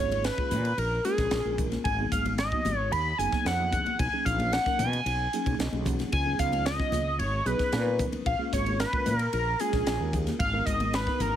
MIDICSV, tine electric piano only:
0, 0, Header, 1, 2, 480
1, 0, Start_track
1, 0, Tempo, 534759
1, 1660, Time_signature, 4, 2, 24, 8
1, 10198, End_track
2, 0, Start_track
2, 0, Title_t, "Tine electric piano"
2, 0, Program_c, 0, 4
2, 0, Note_on_c, 0, 56, 74
2, 0, Note_on_c, 0, 58, 71
2, 0, Note_on_c, 0, 61, 77
2, 0, Note_on_c, 0, 65, 71
2, 0, Note_on_c, 0, 68, 93
2, 219, Note_off_c, 0, 56, 0
2, 219, Note_off_c, 0, 61, 0
2, 219, Note_off_c, 0, 65, 0
2, 219, Note_off_c, 0, 68, 0
2, 220, Note_off_c, 0, 58, 0
2, 340, Note_on_c, 0, 58, 62
2, 342, Note_on_c, 0, 56, 67
2, 342, Note_on_c, 0, 65, 63
2, 342, Note_on_c, 0, 68, 76
2, 345, Note_on_c, 0, 61, 60
2, 519, Note_off_c, 0, 58, 0
2, 520, Note_off_c, 0, 65, 0
2, 521, Note_off_c, 0, 56, 0
2, 521, Note_off_c, 0, 68, 0
2, 522, Note_off_c, 0, 61, 0
2, 586, Note_on_c, 0, 68, 25
2, 587, Note_on_c, 0, 65, 26
2, 641, Note_off_c, 0, 65, 0
2, 641, Note_off_c, 0, 68, 0
2, 711, Note_on_c, 0, 65, 27
2, 712, Note_on_c, 0, 70, 29
2, 763, Note_off_c, 0, 65, 0
2, 764, Note_off_c, 0, 70, 0
2, 944, Note_on_c, 0, 58, 79
2, 944, Note_on_c, 0, 61, 82
2, 945, Note_on_c, 0, 56, 88
2, 946, Note_on_c, 0, 70, 101
2, 947, Note_on_c, 0, 65, 81
2, 1211, Note_off_c, 0, 56, 0
2, 1211, Note_off_c, 0, 58, 0
2, 1211, Note_off_c, 0, 61, 0
2, 1212, Note_off_c, 0, 65, 0
2, 1212, Note_off_c, 0, 70, 0
2, 1302, Note_on_c, 0, 58, 57
2, 1302, Note_on_c, 0, 70, 70
2, 1303, Note_on_c, 0, 56, 64
2, 1304, Note_on_c, 0, 65, 53
2, 1305, Note_on_c, 0, 61, 61
2, 1659, Note_off_c, 0, 56, 0
2, 1659, Note_off_c, 0, 58, 0
2, 1659, Note_off_c, 0, 70, 0
2, 1660, Note_off_c, 0, 61, 0
2, 1660, Note_off_c, 0, 65, 0
2, 1787, Note_on_c, 0, 63, 65
2, 1790, Note_on_c, 0, 54, 81
2, 1792, Note_on_c, 0, 58, 65
2, 1793, Note_on_c, 0, 59, 73
2, 1793, Note_on_c, 0, 68, 83
2, 2142, Note_off_c, 0, 63, 0
2, 2143, Note_off_c, 0, 54, 0
2, 2144, Note_off_c, 0, 58, 0
2, 2144, Note_off_c, 0, 68, 0
2, 2145, Note_off_c, 0, 59, 0
2, 2266, Note_on_c, 0, 59, 65
2, 2269, Note_on_c, 0, 58, 60
2, 2269, Note_on_c, 0, 63, 63
2, 2270, Note_on_c, 0, 54, 70
2, 2270, Note_on_c, 0, 66, 81
2, 2442, Note_off_c, 0, 59, 0
2, 2444, Note_off_c, 0, 54, 0
2, 2444, Note_off_c, 0, 58, 0
2, 2444, Note_off_c, 0, 63, 0
2, 2444, Note_off_c, 0, 66, 0
2, 2511, Note_on_c, 0, 66, 28
2, 2513, Note_on_c, 0, 63, 24
2, 2563, Note_off_c, 0, 66, 0
2, 2564, Note_off_c, 0, 63, 0
2, 2627, Note_on_c, 0, 63, 23
2, 2628, Note_on_c, 0, 68, 27
2, 2682, Note_off_c, 0, 63, 0
2, 2682, Note_off_c, 0, 68, 0
2, 2865, Note_on_c, 0, 58, 80
2, 2866, Note_on_c, 0, 54, 95
2, 2867, Note_on_c, 0, 59, 86
2, 2867, Note_on_c, 0, 63, 89
2, 2867, Note_on_c, 0, 68, 100
2, 3131, Note_off_c, 0, 58, 0
2, 3132, Note_off_c, 0, 54, 0
2, 3132, Note_off_c, 0, 68, 0
2, 3133, Note_off_c, 0, 59, 0
2, 3133, Note_off_c, 0, 63, 0
2, 3227, Note_on_c, 0, 58, 56
2, 3228, Note_on_c, 0, 54, 68
2, 3229, Note_on_c, 0, 59, 54
2, 3229, Note_on_c, 0, 68, 77
2, 3230, Note_on_c, 0, 63, 52
2, 3581, Note_off_c, 0, 58, 0
2, 3582, Note_off_c, 0, 54, 0
2, 3583, Note_off_c, 0, 59, 0
2, 3583, Note_off_c, 0, 63, 0
2, 3583, Note_off_c, 0, 68, 0
2, 3711, Note_on_c, 0, 68, 83
2, 3712, Note_on_c, 0, 54, 85
2, 3712, Note_on_c, 0, 58, 68
2, 3712, Note_on_c, 0, 63, 71
2, 3714, Note_on_c, 0, 61, 65
2, 4064, Note_off_c, 0, 54, 0
2, 4064, Note_off_c, 0, 58, 0
2, 4064, Note_off_c, 0, 63, 0
2, 4064, Note_off_c, 0, 68, 0
2, 4065, Note_off_c, 0, 61, 0
2, 4186, Note_on_c, 0, 54, 68
2, 4186, Note_on_c, 0, 58, 66
2, 4186, Note_on_c, 0, 63, 63
2, 4188, Note_on_c, 0, 61, 55
2, 4188, Note_on_c, 0, 70, 73
2, 4362, Note_off_c, 0, 54, 0
2, 4362, Note_off_c, 0, 58, 0
2, 4362, Note_off_c, 0, 63, 0
2, 4363, Note_off_c, 0, 61, 0
2, 4364, Note_off_c, 0, 70, 0
2, 4428, Note_on_c, 0, 63, 24
2, 4436, Note_on_c, 0, 66, 30
2, 4482, Note_off_c, 0, 63, 0
2, 4486, Note_off_c, 0, 66, 0
2, 4550, Note_on_c, 0, 71, 28
2, 4553, Note_on_c, 0, 63, 26
2, 4603, Note_off_c, 0, 71, 0
2, 4604, Note_off_c, 0, 63, 0
2, 4789, Note_on_c, 0, 61, 85
2, 4790, Note_on_c, 0, 63, 74
2, 4791, Note_on_c, 0, 54, 94
2, 4791, Note_on_c, 0, 68, 97
2, 4792, Note_on_c, 0, 58, 84
2, 5027, Note_on_c, 0, 75, 62
2, 5054, Note_off_c, 0, 61, 0
2, 5054, Note_off_c, 0, 63, 0
2, 5055, Note_off_c, 0, 54, 0
2, 5055, Note_off_c, 0, 58, 0
2, 5055, Note_off_c, 0, 68, 0
2, 5138, Note_on_c, 0, 54, 74
2, 5138, Note_on_c, 0, 61, 65
2, 5139, Note_on_c, 0, 63, 67
2, 5141, Note_on_c, 0, 58, 68
2, 5142, Note_on_c, 0, 68, 76
2, 5247, Note_off_c, 0, 75, 0
2, 5256, Note_on_c, 0, 78, 56
2, 5481, Note_off_c, 0, 78, 0
2, 5497, Note_off_c, 0, 54, 0
2, 5497, Note_off_c, 0, 61, 0
2, 5498, Note_off_c, 0, 63, 0
2, 5499, Note_off_c, 0, 58, 0
2, 5499, Note_off_c, 0, 68, 0
2, 5620, Note_on_c, 0, 63, 75
2, 5621, Note_on_c, 0, 54, 71
2, 5622, Note_on_c, 0, 59, 76
2, 5622, Note_on_c, 0, 68, 91
2, 5625, Note_on_c, 0, 61, 70
2, 5978, Note_off_c, 0, 54, 0
2, 5978, Note_off_c, 0, 63, 0
2, 5979, Note_off_c, 0, 59, 0
2, 5979, Note_off_c, 0, 68, 0
2, 5981, Note_off_c, 0, 61, 0
2, 6088, Note_on_c, 0, 61, 65
2, 6091, Note_on_c, 0, 59, 59
2, 6091, Note_on_c, 0, 63, 57
2, 6093, Note_on_c, 0, 54, 69
2, 6095, Note_on_c, 0, 65, 75
2, 6274, Note_off_c, 0, 61, 0
2, 6275, Note_off_c, 0, 59, 0
2, 6275, Note_off_c, 0, 63, 0
2, 6276, Note_off_c, 0, 54, 0
2, 6277, Note_off_c, 0, 65, 0
2, 6458, Note_on_c, 0, 68, 24
2, 6460, Note_on_c, 0, 63, 24
2, 6517, Note_off_c, 0, 68, 0
2, 6518, Note_off_c, 0, 63, 0
2, 6693, Note_on_c, 0, 54, 93
2, 6693, Note_on_c, 0, 68, 107
2, 6694, Note_on_c, 0, 61, 86
2, 6694, Note_on_c, 0, 63, 83
2, 6696, Note_on_c, 0, 59, 78
2, 6965, Note_off_c, 0, 54, 0
2, 6965, Note_off_c, 0, 68, 0
2, 6966, Note_off_c, 0, 61, 0
2, 6966, Note_off_c, 0, 63, 0
2, 6967, Note_off_c, 0, 59, 0
2, 7050, Note_on_c, 0, 63, 55
2, 7053, Note_on_c, 0, 70, 73
2, 7055, Note_on_c, 0, 54, 63
2, 7056, Note_on_c, 0, 59, 57
2, 7057, Note_on_c, 0, 61, 55
2, 7413, Note_off_c, 0, 63, 0
2, 7415, Note_off_c, 0, 54, 0
2, 7415, Note_off_c, 0, 70, 0
2, 7416, Note_off_c, 0, 59, 0
2, 7417, Note_off_c, 0, 61, 0
2, 7529, Note_on_c, 0, 68, 92
2, 7530, Note_on_c, 0, 56, 77
2, 7530, Note_on_c, 0, 58, 73
2, 7531, Note_on_c, 0, 61, 78
2, 7533, Note_on_c, 0, 65, 68
2, 7892, Note_off_c, 0, 68, 0
2, 7893, Note_off_c, 0, 56, 0
2, 7893, Note_off_c, 0, 58, 0
2, 7893, Note_off_c, 0, 61, 0
2, 7894, Note_off_c, 0, 65, 0
2, 8013, Note_on_c, 0, 58, 61
2, 8015, Note_on_c, 0, 70, 76
2, 8016, Note_on_c, 0, 61, 66
2, 8017, Note_on_c, 0, 65, 65
2, 8018, Note_on_c, 0, 56, 74
2, 8195, Note_off_c, 0, 58, 0
2, 8196, Note_off_c, 0, 70, 0
2, 8197, Note_off_c, 0, 61, 0
2, 8197, Note_off_c, 0, 65, 0
2, 8198, Note_off_c, 0, 56, 0
2, 8256, Note_on_c, 0, 65, 26
2, 8258, Note_on_c, 0, 70, 28
2, 8315, Note_off_c, 0, 65, 0
2, 8316, Note_off_c, 0, 70, 0
2, 8380, Note_on_c, 0, 65, 26
2, 8385, Note_on_c, 0, 68, 28
2, 8438, Note_off_c, 0, 65, 0
2, 8440, Note_off_c, 0, 68, 0
2, 8618, Note_on_c, 0, 68, 103
2, 8620, Note_on_c, 0, 58, 88
2, 8620, Note_on_c, 0, 61, 83
2, 8621, Note_on_c, 0, 65, 90
2, 8623, Note_on_c, 0, 56, 96
2, 8887, Note_off_c, 0, 68, 0
2, 8888, Note_off_c, 0, 58, 0
2, 8888, Note_off_c, 0, 61, 0
2, 8889, Note_off_c, 0, 56, 0
2, 8889, Note_off_c, 0, 65, 0
2, 8981, Note_on_c, 0, 58, 59
2, 8985, Note_on_c, 0, 56, 67
2, 8985, Note_on_c, 0, 61, 55
2, 8988, Note_on_c, 0, 65, 58
2, 8989, Note_on_c, 0, 70, 73
2, 9337, Note_off_c, 0, 58, 0
2, 9339, Note_off_c, 0, 56, 0
2, 9339, Note_off_c, 0, 61, 0
2, 9341, Note_off_c, 0, 65, 0
2, 9341, Note_off_c, 0, 70, 0
2, 9450, Note_on_c, 0, 63, 82
2, 9451, Note_on_c, 0, 59, 67
2, 9452, Note_on_c, 0, 56, 83
2, 9455, Note_on_c, 0, 70, 94
2, 9456, Note_on_c, 0, 66, 74
2, 9811, Note_off_c, 0, 63, 0
2, 9812, Note_off_c, 0, 56, 0
2, 9812, Note_off_c, 0, 59, 0
2, 9814, Note_off_c, 0, 66, 0
2, 9814, Note_off_c, 0, 70, 0
2, 9935, Note_on_c, 0, 59, 62
2, 9937, Note_on_c, 0, 63, 70
2, 9939, Note_on_c, 0, 66, 64
2, 9940, Note_on_c, 0, 70, 72
2, 9941, Note_on_c, 0, 56, 68
2, 10115, Note_off_c, 0, 59, 0
2, 10116, Note_off_c, 0, 63, 0
2, 10117, Note_off_c, 0, 66, 0
2, 10117, Note_off_c, 0, 70, 0
2, 10118, Note_off_c, 0, 56, 0
2, 10198, End_track
0, 0, End_of_file